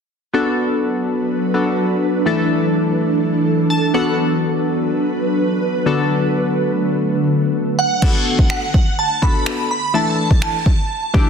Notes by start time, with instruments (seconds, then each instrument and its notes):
0.34 ambient pad F#3 D4 B4, synth keys B3 D4 F#4 A4
1.54 synth keys B3 D4 F#4 A4
2.26 synth keys E3 A3 D4 E4 A4, ambient pad E3 A4
3.70 synth keys A5
3.94 ambient pad F#3 B4, synth keys B3 D4 F#4 A4 F#5
5.86 synth keys D3 B3 D4 F#4 A4, ambient pad D3 A3
7.79 synth bell F#5
8.02 synth keys B3 D4 F#4 A4, kick, crash
8.39 kick
8.50 synth bell F#5, finger snap
8.74 kick
8.99 synth bell A5
9.22 synth keys B3 D4 F#4 A4, synth bell B5, kick
9.46 finger snap
9.71 synth bell B5
9.94 synth keys E3 A3 D4 E4 A4, synth bell A5
10.31 kick
10.42 synth bell A5, finger snap
10.66 kick
11.14 synth keys E3 A3 D4 E4 G4, kick